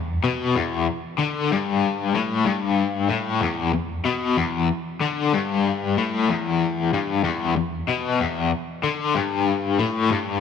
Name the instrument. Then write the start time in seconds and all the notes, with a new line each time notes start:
overdriven electric guitar
Already playing: E2
0.24 B2
0.55 E2
1.18 D3
1.51 G2
2.14 A2
2.46 G2
3.09 A2
3.41 E2
3.74 E2
4.05 B2
4.37 E2
5.01 D3
5.33 G2
5.97 A2
6.29 E2
6.93 G2
7.24 E2
7.56 E2
7.88 B2
8.20 E2
8.84 D3
9.15 G2
9.79 A2
10.10 G2